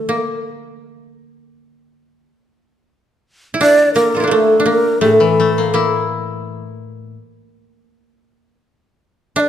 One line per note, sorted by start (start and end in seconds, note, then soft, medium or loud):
0.00 2.28 D3 soft
0.00 0.15 E3 soft
0.00 2.26 F3 soft
0.00 0.15 A3 medium
0.00 0.36 D4 medium
0.00 0.47 A4 medium
0.09 2.87 A#3 medium
3.54 4.20 E4 medium
3.61 4.23 D4 medium
3.61 3.94 D5 medium
3.94 4.27 A#3 medium
3.94 4.22 A#4 medium
4.15 6.35 F4 soft
4.15 4.33 A4 soft
4.20 4.59 D4 soft
4.20 6.46 E4 soft
4.20 4.34 A#4 medium
4.27 4.72 A3 medium
4.27 4.65 A#3 soft
4.33 4.70 A4 medium
4.60 7.02 D4 soft
4.66 5.07 A#3 medium
4.66 5.02 A#4 medium
5.01 7.14 A2 soft
5.01 5.80 A3 medium
5.01 6.04 A4 medium
5.20 6.61 E3 soft
5.40 6.80 A3 soft
5.58 6.98 A#3 soft
5.74 8.52 A#3 medium
5.74 7.15 E4 soft
9.36 9.49 D4 medium
9.36 9.49 D5 medium
9.36 9.41 E5 medium